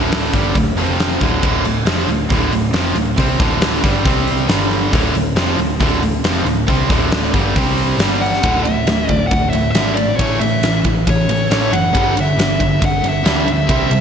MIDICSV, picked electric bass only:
0, 0, Header, 1, 2, 480
1, 0, Start_track
1, 0, Tempo, 437956
1, 1567, Time_signature, 4, 2, 24, 8
1, 15351, End_track
2, 0, Start_track
2, 0, Title_t, "Picked electric bass"
2, 0, Program_c, 0, 34
2, 0, Note_on_c, 0, 26, 86
2, 327, Note_off_c, 0, 26, 0
2, 370, Note_on_c, 0, 31, 88
2, 592, Note_off_c, 0, 31, 0
2, 605, Note_on_c, 0, 26, 81
2, 812, Note_off_c, 0, 26, 0
2, 819, Note_on_c, 0, 29, 92
2, 1278, Note_off_c, 0, 29, 0
2, 1325, Note_on_c, 0, 26, 88
2, 1549, Note_off_c, 0, 26, 0
2, 1566, Note_on_c, 0, 26, 84
2, 1789, Note_off_c, 0, 26, 0
2, 1796, Note_on_c, 0, 26, 69
2, 2024, Note_off_c, 0, 26, 0
2, 2030, Note_on_c, 0, 29, 93
2, 2261, Note_off_c, 0, 29, 0
2, 2278, Note_on_c, 0, 26, 81
2, 2505, Note_off_c, 0, 26, 0
2, 2520, Note_on_c, 0, 26, 92
2, 2746, Note_off_c, 0, 26, 0
2, 2750, Note_on_c, 0, 26, 77
2, 2978, Note_off_c, 0, 26, 0
2, 2984, Note_on_c, 0, 29, 90
2, 3217, Note_off_c, 0, 29, 0
2, 3237, Note_on_c, 0, 26, 80
2, 3464, Note_off_c, 0, 26, 0
2, 3485, Note_on_c, 0, 36, 94
2, 3708, Note_off_c, 0, 36, 0
2, 3716, Note_on_c, 0, 26, 86
2, 4166, Note_off_c, 0, 26, 0
2, 4202, Note_on_c, 0, 31, 89
2, 4426, Note_off_c, 0, 31, 0
2, 4436, Note_on_c, 0, 36, 95
2, 4886, Note_off_c, 0, 36, 0
2, 4917, Note_on_c, 0, 31, 99
2, 5366, Note_off_c, 0, 31, 0
2, 5408, Note_on_c, 0, 26, 92
2, 5629, Note_off_c, 0, 26, 0
2, 5639, Note_on_c, 0, 26, 75
2, 5856, Note_off_c, 0, 26, 0
2, 5863, Note_on_c, 0, 29, 101
2, 6095, Note_off_c, 0, 29, 0
2, 6111, Note_on_c, 0, 26, 78
2, 6339, Note_off_c, 0, 26, 0
2, 6359, Note_on_c, 0, 26, 93
2, 6575, Note_off_c, 0, 26, 0
2, 6582, Note_on_c, 0, 26, 75
2, 6814, Note_off_c, 0, 26, 0
2, 6835, Note_on_c, 0, 29, 96
2, 7059, Note_off_c, 0, 29, 0
2, 7066, Note_on_c, 0, 26, 85
2, 7296, Note_off_c, 0, 26, 0
2, 7318, Note_on_c, 0, 36, 85
2, 7543, Note_off_c, 0, 36, 0
2, 7563, Note_on_c, 0, 26, 95
2, 8008, Note_off_c, 0, 26, 0
2, 8046, Note_on_c, 0, 31, 94
2, 8267, Note_off_c, 0, 31, 0
2, 8286, Note_on_c, 0, 36, 96
2, 8730, Note_off_c, 0, 36, 0
2, 8745, Note_on_c, 0, 31, 91
2, 9199, Note_off_c, 0, 31, 0
2, 9248, Note_on_c, 0, 26, 91
2, 9692, Note_off_c, 0, 26, 0
2, 9721, Note_on_c, 0, 26, 88
2, 9945, Note_off_c, 0, 26, 0
2, 9965, Note_on_c, 0, 26, 81
2, 10187, Note_off_c, 0, 26, 0
2, 10205, Note_on_c, 0, 26, 85
2, 10427, Note_off_c, 0, 26, 0
2, 10438, Note_on_c, 0, 26, 81
2, 10663, Note_off_c, 0, 26, 0
2, 10684, Note_on_c, 0, 32, 85
2, 11131, Note_off_c, 0, 32, 0
2, 11164, Note_on_c, 0, 33, 93
2, 11387, Note_off_c, 0, 33, 0
2, 11400, Note_on_c, 0, 45, 81
2, 11624, Note_off_c, 0, 45, 0
2, 11637, Note_on_c, 0, 33, 88
2, 11863, Note_off_c, 0, 33, 0
2, 11880, Note_on_c, 0, 33, 78
2, 12105, Note_off_c, 0, 33, 0
2, 12133, Note_on_c, 0, 33, 90
2, 12351, Note_off_c, 0, 33, 0
2, 12362, Note_on_c, 0, 33, 85
2, 12586, Note_off_c, 0, 33, 0
2, 12601, Note_on_c, 0, 33, 82
2, 12825, Note_off_c, 0, 33, 0
2, 12837, Note_on_c, 0, 30, 84
2, 13063, Note_off_c, 0, 30, 0
2, 13087, Note_on_c, 0, 31, 92
2, 13533, Note_off_c, 0, 31, 0
2, 13552, Note_on_c, 0, 31, 87
2, 13781, Note_off_c, 0, 31, 0
2, 13806, Note_on_c, 0, 31, 79
2, 14028, Note_off_c, 0, 31, 0
2, 14053, Note_on_c, 0, 31, 91
2, 14272, Note_off_c, 0, 31, 0
2, 14280, Note_on_c, 0, 31, 85
2, 14505, Note_off_c, 0, 31, 0
2, 14516, Note_on_c, 0, 38, 83
2, 14967, Note_off_c, 0, 38, 0
2, 15001, Note_on_c, 0, 36, 89
2, 15226, Note_off_c, 0, 36, 0
2, 15244, Note_on_c, 0, 48, 78
2, 15351, Note_off_c, 0, 48, 0
2, 15351, End_track
0, 0, End_of_file